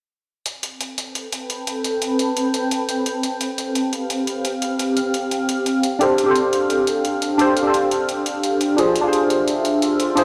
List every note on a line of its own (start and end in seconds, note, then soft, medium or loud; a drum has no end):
0.46 5.79 C4 medium
0.46 3.21 A4 medium
0.46 3.21 B4 medium
0.46 3.21 G5 medium
0.46 closed hi-hat medium
0.63 closed hi-hat medium
0.81 closed hi-hat medium
0.98 closed hi-hat medium
1.15 closed hi-hat medium
1.32 closed hi-hat medium
1.50 closed hi-hat medium
1.67 closed hi-hat medium
1.84 closed hi-hat medium
2.02 closed hi-hat medium
2.19 closed hi-hat medium
2.37 closed hi-hat medium
2.54 closed hi-hat medium
2.71 closed hi-hat medium
2.89 closed hi-hat medium
3.06 closed hi-hat medium
3.23 8.74 G4 medium
3.23 8.74 F5 medium
3.23 closed hi-hat medium
3.41 closed hi-hat medium
3.58 closed hi-hat medium
3.75 closed hi-hat medium
3.93 closed hi-hat medium
4.10 closed hi-hat medium
4.27 closed hi-hat medium
4.45 closed hi-hat medium
4.62 closed hi-hat medium
4.79 closed hi-hat medium
4.97 closed hi-hat medium
5.14 closed hi-hat medium
5.31 closed hi-hat medium
5.49 closed hi-hat medium
5.66 closed hi-hat medium
5.83 10.24 D4 medium
5.83 8.75 A4 medium
5.83 closed hi-hat medium
5.99 6.23 D4 medium
5.99 6.25 G4 medium
5.99 6.25 A4 medium
5.99 6.26 C5 medium
5.99 closed hi-hat medium
6.18 closed hi-hat medium
6.24 7.36 D4 medium
6.24 7.37 G4 medium
6.28 7.38 A4 medium
6.28 7.39 C5 medium
6.36 closed hi-hat medium
6.53 closed hi-hat medium
6.70 closed hi-hat medium
6.87 closed hi-hat medium
7.05 closed hi-hat medium
7.22 closed hi-hat medium
7.38 7.61 D4 medium
7.38 7.63 G4 medium
7.38 7.64 A4 medium
7.38 7.65 C5 loud
7.38 closed hi-hat medium
7.57 closed hi-hat medium
7.63 8.75 D4 medium
7.63 8.76 G4 medium
7.67 8.77 A4 medium
7.67 8.78 C5 medium
7.74 closed hi-hat medium
7.91 closed hi-hat medium
8.09 closed hi-hat medium
8.26 closed hi-hat medium
8.43 closed hi-hat medium
8.61 closed hi-hat medium
8.76 9.00 D4 medium
8.76 9.02 F4 medium
8.76 10.24 F4 medium
8.76 10.24 G#4 medium
8.76 9.03 G#4 medium
8.76 10.24 C5 medium
8.76 9.03 C5 medium
8.76 10.24 E5 medium
8.76 closed hi-hat medium
8.96 closed hi-hat medium
9.01 10.13 D4 medium
9.01 10.14 F4 medium
9.06 10.15 G#4 medium
9.06 10.17 C5 medium
9.13 closed hi-hat medium
9.30 closed hi-hat medium
9.48 closed hi-hat medium
9.65 closed hi-hat medium
9.82 closed hi-hat medium
10.00 closed hi-hat medium
10.15 10.24 D4 medium
10.15 10.24 F4 medium
10.15 10.24 G#4 medium
10.15 10.24 C5 medium
10.15 closed hi-hat medium